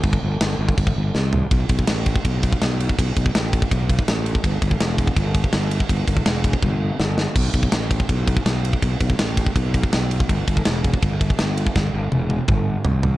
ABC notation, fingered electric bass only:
X:1
M:4/4
L:1/8
Q:1/4=164
K:Ador
V:1 name="Fingered electric bass" clef=bass
G,,, G,,, G,,, G,,, G,,, G,,, C,,2 | B,,, B,,, A,,,2 B,,,2 B,,,2 | B,,, B,,, A,,,2 B,,,2 A,,,2 | G,,, G,,, E,,,2 G,,,2 G,,,2 |
G,,, G,,, E,,,2 G,,,2 G,,,2 | B,,, B,,, A,,,2 B,,,2 B,,,2 | B,,, B,,, A,,,2 B,,,2 B,,,2 | G,,, G,,, E,,,2 G,,,2 G,,,2 |
G,,, G,,, E,,,2 G,,,2 C,,2 |]